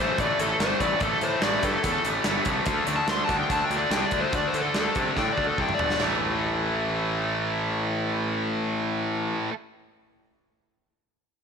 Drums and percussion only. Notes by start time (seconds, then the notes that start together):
0.18 kick, closed hi-hat
0.39 closed hi-hat
0.60 snare, closed hi-hat
0.80 kick, closed hi-hat
1.00 kick, closed hi-hat
1.21 closed hi-hat
1.42 snare, closed hi-hat
1.63 kick, closed hi-hat
1.84 kick, closed hi-hat
2.05 closed hi-hat
2.24 snare, closed hi-hat
2.45 kick, closed hi-hat
2.66 kick, closed hi-hat
2.87 closed hi-hat
3.08 snare, closed hi-hat
3.29 kick, closed hi-hat
3.50 kick, closed hi-hat
3.71 closed hi-hat
3.91 snare, closed hi-hat
4.11 kick, closed hi-hat
4.33 kick, closed hi-hat
4.54 closed hi-hat
4.74 snare, closed hi-hat
4.95 kick, closed hi-hat
5.16 kick, snare
5.38 kick
5.58 kick
5.69 mid tom
5.79 floor tom
5.90 snare
6.00 snare, china